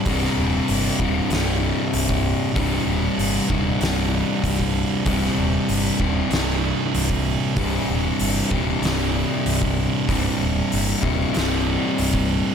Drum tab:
HH |o---o---o---o---|o---o---o---o---|o---o---o---o---|o---o---o---o---|
SD |-o------o-------|--------o-------|-o------o-------|--------o-------|
BD |o-----o------o--|o-----o-----oo--|o-----o------o--|o-----o------o--|

HH |o---o---o---o---|
SD |--------o-------|
BD |o-----o------o--|